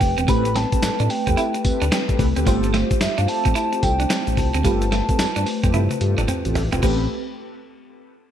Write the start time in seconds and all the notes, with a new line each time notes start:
Already playing: A3 C4 G4 B4 G5
0.01 F1, muted clean electric guitar stroke, kick, open hi-hat, shaker
0.18 E1 C4, closed hi-hat, shaker
0.27 A1 A3 C4 G4 A4 B4 B5, kick, closed hi-hat, tambourine, shaker
0.45 muted clean electric guitar stroke, closed hi-hat, shaker
0.56 C4 A5, snare, closed hi-hat, tambourine
0.72 C4 G4 A4 B4, kick, closed hi-hat, shaker
0.83 A2, snare, closed hi-hat, tambourine, shaker
1.00 A2 D4, closed hi-hat, shaker
1.10 G5, muted clean electric guitar stroke, open hi-hat, tambourine
1.27 E2 C4 G4 A4 B4, kick, closed hi-hat, shaker
1.37 E4, closed hi-hat, tambourine, shaker
1.54 muted clean electric guitar stroke, closed hi-hat, shaker
1.64 D2 C4 G4 A4 B4, kick, closed hi-hat, tambourine
1.82 D2 D4, closed hi-hat, shaker
1.92 C4, snare, closed hi-hat, tambourine, shaker
2.09 C4 G4 A4 B4, kick, closed hi-hat, shaker
2.18 C2 A3 C4 G4 B4, muted clean electric guitar stroke, kick, open hi-hat, shaker
2.36 D2 C4 G4 A4 B4, closed hi-hat, shaker
2.45 G1 G3 A3 C4 F4 G4 A4 C5, kick, closed hi-hat, tambourine, shaker
2.63 muted clean electric guitar stroke, closed hi-hat, shaker
2.74 A3, snare, closed hi-hat, tambourine
2.91 kick, closed hi-hat, shaker
3.01 G2 E5, snare, closed hi-hat, tambourine, shaker
3.18 G2 D4 F5, closed hi-hat, shaker
3.28 C4 F4 G4 A4 A5, muted clean electric guitar stroke, open hi-hat, tambourine
3.45 A1 C4, kick, closed hi-hat, shaker
3.55 E4 A5, closed hi-hat, tambourine, shaker
3.72 C4 F4 G4 A4, muted clean electric guitar stroke, closed hi-hat, shaker
3.83 C2 G5, kick, closed hi-hat, tambourine
4.00 D4, closed hi-hat, shaker
4.10 C4, snare, closed hi-hat, tambourine, shaker
4.27 A1, closed hi-hat, shaker
4.37 C2 A5, muted clean electric guitar stroke, kick, open hi-hat, shaker
4.54 D2 C4, closed hi-hat, shaker
4.63 G1 G3 A3 C4 F4 G4 A4 B4, kick, closed hi-hat, tambourine, shaker
4.82 muted clean electric guitar stroke, closed hi-hat, shaker
4.92 A3, snare, closed hi-hat, tambourine
5.08 C4 F4 G4 A4, kick, closed hi-hat, shaker
5.19 G2, snare, closed hi-hat, tambourine, shaker
5.36 G2 D4, closed hi-hat, shaker
5.46 muted clean electric guitar stroke, open hi-hat, tambourine
5.63 F2 C4 F4 G4 A4, kick, closed hi-hat, shaker
5.74 G2 E4, closed hi-hat, high tom, shaker
5.91 muted clean electric guitar stroke, closed hi-hat, high tom, shaker
6.01 G2 C4 F4 G4 A4, closed hi-hat
6.18 G1 D4, closed hi-hat, mid tom, shaker
6.28 C4, closed hi-hat, mid tom, shaker
6.45 A1 C4 F4 G4 A4, closed hi-hat, shaker
6.55 A1, muted clean electric guitar stroke, floor tom, open hi-hat, shaker
6.72 E1 C4 F4 G4 A4, closed hi-hat, floor tom, shaker
6.82 A1 A3 C4 G4 A4 B4, kick, crash, shaker